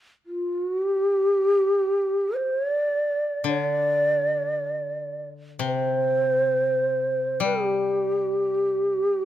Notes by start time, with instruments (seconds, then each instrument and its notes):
0.26 shakuhachi F4
0.63 shakuhachi F#4
0.87 shakuhachi G4
2.37 shakuhachi C5
2.57 shakuhachi C#5
2.70 shakuhachi D5
3.44 koto D3
3.49 shakuhachi D5
5.59 koto C3
5.65 shakuhachi C5
7.40 koto G3, shakuhachi G4